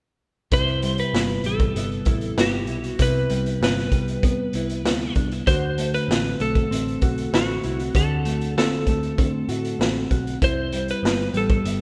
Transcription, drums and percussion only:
0.51 kick loud
0.51 closed hi-hat medium
0.68 closed hi-hat soft
0.82 closed hi-hat medium
0.98 closed hi-hat medium
1.15 snare loud
1.28 closed hi-hat soft
1.44 closed hi-hat medium
1.60 kick medium
1.60 closed hi-hat soft
1.76 closed hi-hat medium
1.91 closed hi-hat soft
2.05 kick medium
2.05 closed hi-hat medium
2.21 closed hi-hat soft
2.38 snare loud
2.67 closed hi-hat medium
2.84 closed hi-hat soft
2.99 kick loud
2.99 closed hi-hat medium
3.15 closed hi-hat soft
3.30 closed hi-hat medium
3.46 closed hi-hat soft
3.63 snare loud
3.79 snare soft
3.92 kick medium
3.92 closed hi-hat medium
4.08 closed hi-hat soft
4.23 kick medium
4.23 closed hi-hat medium
4.53 closed hi-hat medium
4.69 closed hi-hat medium
4.85 snare loud
5.15 kick medium
5.15 closed hi-hat medium
5.32 closed hi-hat soft
5.47 kick loud
5.47 closed hi-hat medium
5.78 closed hi-hat medium
5.94 closed hi-hat soft
6.11 snare loud
6.24 closed hi-hat soft
6.40 closed hi-hat medium
6.55 kick medium
6.55 closed hi-hat soft
6.72 closed hi-hat medium
6.88 closed hi-hat soft
7.01 kick medium
7.01 closed hi-hat medium
7.18 closed hi-hat medium
7.34 snare loud
7.63 closed hi-hat medium
7.79 closed hi-hat soft
7.95 kick loud
7.95 closed hi-hat medium
8.25 closed hi-hat medium
8.41 closed hi-hat soft
8.58 snare loud
8.71 closed hi-hat soft
8.87 kick medium
8.87 closed hi-hat medium
9.03 closed hi-hat soft
9.18 kick loud
9.18 closed hi-hat medium
9.49 closed hi-hat medium
9.65 closed hi-hat medium
9.81 snare loud
10.11 kick medium
10.11 closed hi-hat medium
10.27 closed hi-hat soft
10.42 kick loud
10.42 closed hi-hat medium
10.72 closed hi-hat medium
10.88 closed hi-hat soft
11.05 snare medium
11.18 closed hi-hat soft
11.34 closed hi-hat medium
11.50 kick medium
11.50 closed hi-hat soft
11.65 closed hi-hat medium

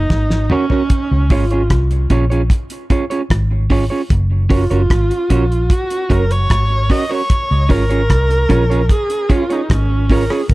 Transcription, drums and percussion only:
0.10 kick loud
0.10 snare medium
0.30 snare medium
0.50 mid tom medium
0.70 floor tom medium
0.90 kick loud
0.90 closed hi-hat medium
1.30 kick medium
1.30 open hi-hat medium
1.51 closed hi-hat medium
1.70 kick loud
1.70 cross-stick loud
1.70 closed hi-hat medium
1.91 closed hi-hat soft
2.10 kick medium
2.10 closed hi-hat medium
2.32 closed hi-hat soft
2.50 kick loud
2.50 closed hi-hat medium
2.70 closed hi-hat medium
2.90 kick medium
2.90 closed hi-hat medium
3.11 closed hi-hat medium
3.30 kick loud
3.30 cross-stick loud
3.30 closed hi-hat medium
3.70 kick medium
3.70 open hi-hat medium
4.10 kick loud
4.10 closed hi-hat medium
4.50 kick medium
4.50 open hi-hat medium
4.71 closed hi-hat soft
4.90 kick loud
4.90 cross-stick loud
4.90 closed hi-hat medium
5.11 closed hi-hat soft
5.30 kick medium
5.30 closed hi-hat medium
5.52 closed hi-hat soft
5.70 kick loud
5.70 closed hi-hat medium
5.90 closed hi-hat medium
6.10 kick medium
6.10 closed hi-hat medium
6.31 closed hi-hat medium
6.50 kick loud
6.50 cross-stick loud
6.50 closed hi-hat medium
6.90 kick medium
6.90 open hi-hat medium
7.30 kick loud
7.30 closed hi-hat medium
7.70 kick medium
7.70 open hi-hat medium
7.91 closed hi-hat medium
8.10 kick loud
8.10 cross-stick loud
8.10 closed hi-hat medium
8.31 closed hi-hat soft
8.50 kick medium
8.50 closed hi-hat medium
8.72 closed hi-hat soft
8.89 kick loud
8.89 closed hi-hat medium
9.10 closed hi-hat medium
9.30 kick medium
9.30 closed hi-hat medium
9.50 closed hi-hat medium
9.70 kick loud
9.70 cross-stick loud
9.70 closed hi-hat medium
10.10 kick medium
10.10 open hi-hat medium
10.30 cross-stick medium
10.49 kick loud
10.49 closed hi-hat medium

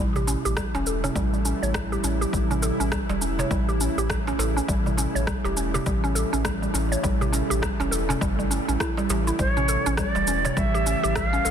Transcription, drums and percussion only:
0.16 darbuka dum medium
0.16 cabasa soft
0.27 darbuka tek medium
0.27 cabasa medium
0.45 cabasa soft
0.57 kick loud
0.57 cross-stick loud
0.57 cabasa soft
0.75 darbuka tek medium
0.75 cabasa soft
0.87 cabasa medium
1.04 darbuka tek medium
1.04 darbuka dum medium
1.04 cabasa soft
1.16 kick loud
1.16 cabasa soft
1.34 cabasa soft
1.45 cabasa medium
1.63 cabasa soft
1.74 kick loud
1.74 cross-stick loud
1.74 cabasa soft
1.93 cabasa soft
2.04 darbuka ka medium
2.04 cabasa medium
2.22 cabasa soft
2.33 kick loud
2.33 cabasa soft
2.51 darbuka ka soft
2.51 darbuka dum medium
2.51 cabasa soft
2.63 darbuka tek medium
2.63 cabasa medium
2.81 cabasa soft
2.92 kick medium
2.92 cross-stick loud
2.92 cabasa soft
3.09 darbuka tek medium
3.09 cabasa soft
3.22 cabasa medium
3.38 darbuka tek medium
3.38 darbuka dum medium
3.38 cabasa soft
3.51 kick loud
3.51 cabasa soft
3.69 cabasa soft
3.81 cabasa medium
3.98 cabasa soft
4.10 kick loud
4.10 cross-stick loud
4.10 cabasa soft
4.27 darbuka tek medium
4.27 cabasa soft
4.39 darbuka tek medium
4.39 cabasa medium
4.58 cabasa soft
4.68 kick loud
4.68 cabasa soft
4.86 darbuka dum medium
4.86 cabasa soft
4.97 darbuka tek medium
4.97 cabasa medium
5.16 cabasa soft
5.27 kick loud
5.27 cross-stick medium
5.27 cabasa soft
5.45 darbuka tek medium
5.45 cabasa soft
5.57 cabasa medium
5.74 darbuka tek medium
5.74 darbuka dum medium
5.74 cabasa soft
5.86 kick loud
5.86 cabasa soft
6.04 cabasa soft
6.16 cabasa medium
6.34 cabasa soft
6.45 kick loud
6.45 cross-stick loud
6.45 cabasa soft
6.63 cabasa soft
6.75 darbuka ka medium
6.75 cabasa medium
6.92 cabasa soft
7.04 kick loud
7.04 cabasa soft
7.21 darbuka ka soft
7.21 darbuka dum medium
7.21 cabasa soft
7.33 darbuka tek medium
7.33 cabasa medium
7.51 cabasa soft
7.63 kick loud
7.63 cross-stick loud
7.63 cabasa soft
7.80 darbuka tek medium
7.80 cabasa soft
7.93 cabasa medium
8.10 darbuka tek medium
8.10 darbuka dum medium
8.10 cabasa soft
8.21 kick loud
8.21 cabasa soft
8.40 cabasa soft
8.51 cabasa medium
8.69 cabasa soft
8.80 kick loud
8.80 cross-stick medium
8.80 cabasa soft
8.97 darbuka tek medium
8.97 cabasa soft
9.10 darbuka tek medium
9.10 cabasa medium
9.27 cabasa soft
9.39 kick medium
9.39 cabasa soft
9.57 darbuka dum medium
9.57 cabasa soft
9.68 darbuka tek soft
9.68 cabasa medium
9.86 cabasa soft
9.97 kick medium
9.97 cross-stick medium
9.97 cabasa soft
10.15 darbuka tek medium
10.15 cabasa soft
10.27 cabasa medium
10.45 darbuka tek medium
10.45 darbuka dum medium
10.45 cabasa soft
10.57 kick loud
10.57 cabasa soft
10.75 cabasa soft
10.87 cabasa medium
11.04 cabasa soft
11.16 kick loud
11.16 cross-stick loud
11.16 cabasa soft
11.34 cabasa soft
11.45 darbuka ka medium
11.45 cabasa medium

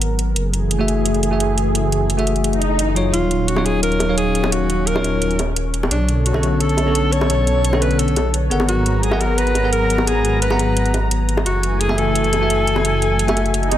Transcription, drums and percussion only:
0.01 closed hi-hat medium
0.19 closed hi-hat medium
0.36 closed hi-hat medium
0.54 closed hi-hat medium
0.71 closed hi-hat medium
0.88 closed hi-hat medium
1.06 closed hi-hat medium
1.14 closed hi-hat soft
1.23 closed hi-hat medium
1.40 closed hi-hat medium
1.58 closed hi-hat medium
1.75 closed hi-hat medium
1.92 closed hi-hat medium
2.10 closed hi-hat medium
2.19 closed hi-hat soft
2.27 closed hi-hat medium
2.36 closed hi-hat soft
2.44 closed hi-hat medium
2.53 closed hi-hat soft
2.62 closed hi-hat medium
2.79 closed hi-hat medium
2.96 closed hi-hat medium
3.14 closed hi-hat medium
3.31 closed hi-hat medium
3.48 closed hi-hat medium
3.56 high bongo medium
3.66 closed hi-hat medium
3.83 closed hi-hat medium
3.92 closed hi-hat soft
4.00 closed hi-hat medium
4.00 high bongo medium
4.18 closed hi-hat medium
4.35 closed hi-hat medium
4.44 high bongo medium
4.52 closed hi-hat medium
4.70 closed hi-hat medium
4.87 closed hi-hat medium
4.96 high bongo medium
5.04 closed hi-hat medium
5.22 closed hi-hat medium
5.31 closed hi-hat soft
5.39 closed hi-hat medium
5.39 high bongo medium
5.56 closed hi-hat medium
5.74 closed hi-hat medium
5.83 high bongo medium
5.91 closed hi-hat medium
6.08 closed hi-hat medium
6.26 closed hi-hat medium
6.34 high bongo medium
6.43 closed hi-hat medium
6.60 closed hi-hat medium
6.69 closed hi-hat soft
6.77 closed hi-hat medium
6.77 high bongo medium
6.95 closed hi-hat medium
7.12 closed hi-hat medium
7.21 high bongo medium
7.30 closed hi-hat medium
7.47 closed hi-hat medium
7.64 closed hi-hat medium
7.73 high bongo medium
7.82 closed hi-hat medium
7.91 closed hi-hat soft
7.99 closed hi-hat medium
8.08 closed hi-hat soft
8.16 closed hi-hat medium
8.16 high bongo medium
8.34 closed hi-hat medium
8.51 closed hi-hat medium
8.60 high bongo medium
8.69 closed hi-hat medium
8.86 closed hi-hat medium
9.03 closed hi-hat medium
9.11 high bongo medium
9.21 closed hi-hat medium
9.38 closed hi-hat medium
9.47 closed hi-hat soft
9.55 closed hi-hat medium
9.55 high bongo medium
9.73 closed hi-hat medium
9.90 closed hi-hat medium
9.98 high bongo medium
10.07 closed hi-hat medium
10.25 closed hi-hat medium
10.42 closed hi-hat medium
10.50 high bongo medium
10.59 closed hi-hat medium
10.77 closed hi-hat medium
10.86 closed hi-hat soft
10.94 closed hi-hat medium
10.94 high bongo medium
11.11 closed hi-hat medium
11.29 closed hi-hat medium
11.37 high bongo medium
11.46 closed hi-hat medium
11.63 closed hi-hat medium
11.81 closed hi-hat medium
11.89 high bongo medium
11.98 closed hi-hat medium
12.15 closed hi-hat medium
12.24 closed hi-hat soft
12.33 closed hi-hat medium
12.33 high bongo medium
12.50 closed hi-hat medium
12.67 closed hi-hat medium
12.76 high bongo medium
12.85 closed hi-hat medium
13.02 closed hi-hat medium
13.19 closed hi-hat medium
13.28 closed hi-hat soft
13.28 high bongo medium
13.37 closed hi-hat medium
13.46 closed hi-hat soft
13.54 closed hi-hat medium
13.63 closed hi-hat soft
13.71 closed hi-hat medium
13.71 high bongo medium

